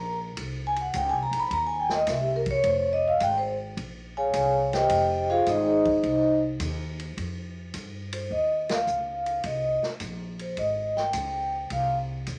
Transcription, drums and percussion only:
0.37 kick, ride
0.76 ride
0.94 kick, hi-hat pedal, ride
1.33 ride
1.51 kick, ride
1.89 snare
2.07 kick, snare, hi-hat pedal, ride
2.46 kick, ride
2.64 kick, ride
3.20 kick, hi-hat pedal, ride
3.77 kick, ride
4.33 kick, hi-hat pedal, ride
4.73 snare, ride
4.89 kick, ride
5.46 kick, hi-hat pedal, ride
5.85 kick, ride
6.03 kick, ride
6.60 kick, hi-hat pedal, ride
6.99 ride
7.17 kick, ride
7.74 kick, hi-hat pedal, ride
8.12 ride
8.31 kick
8.69 snare, ride
8.87 hi-hat pedal
9.26 ride
9.44 kick, ride
9.83 snare
10.00 kick, hi-hat pedal, ride
10.39 ride
10.57 kick, ride
10.97 snare
11.13 kick, hi-hat pedal, ride
11.70 kick, ride
12.27 kick, hi-hat pedal, ride

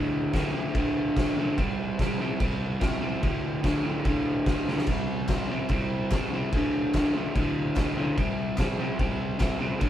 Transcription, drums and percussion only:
0.33 kick, snare, crash
0.75 kick, crash
1.17 kick, snare, crash
1.58 kick, crash
1.99 kick, snare, crash
2.40 kick, crash
2.81 kick, snare, crash
3.23 kick, crash
3.64 kick, snare, crash
4.05 kick, crash
4.46 kick, snare, crash
4.68 snare
4.78 snare
4.87 kick, splash, crash
5.28 kick, snare, clap, crash
5.69 kick, crash
6.11 kick, snare, clap, crash
6.52 kick, crash
6.94 kick, snare, clap, crash
7.35 kick, crash
7.76 kick, snare, clap, crash
8.18 kick, crash
8.58 kick, snare, clap, crash
8.99 kick, crash
9.40 kick, snare, clap, crash
9.81 kick, crash

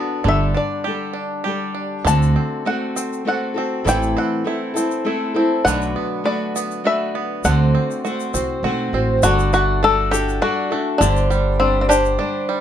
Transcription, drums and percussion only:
2.07 shaker
2.22 shaker
2.97 shaker
3.13 shaker
3.88 shaker
4.03 shaker
4.77 shaker
4.91 shaker
5.67 shaker
5.82 shaker
6.56 shaker
6.71 shaker
7.44 shaker
7.91 shaker
8.05 shaker
8.20 shaker
8.34 shaker
9.23 shaker
9.39 shaker
9.53 shaker
10.13 shaker
10.29 shaker
11.02 shaker
11.17 shaker
11.31 shaker
11.91 shaker
12.05 shaker

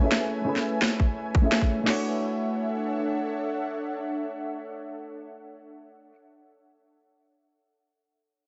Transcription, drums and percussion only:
0.12 snare
0.56 snare
0.82 snare
1.00 kick
1.35 kick
1.52 snare
1.61 kick
1.87 snare, crash

